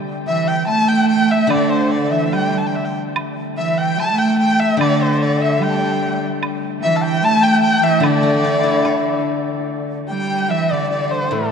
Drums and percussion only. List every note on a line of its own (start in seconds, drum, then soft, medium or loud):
0.68 high woodblock soft
1.50 high woodblock medium
2.33 high woodblock soft
2.33 low woodblock soft
3.16 high woodblock medium
3.99 high woodblock soft
4.81 high woodblock medium
5.62 high woodblock soft
6.43 high woodblock medium
7.24 high woodblock soft
8.03 high woodblock medium
8.85 high woodblock medium
8.85 low woodblock soft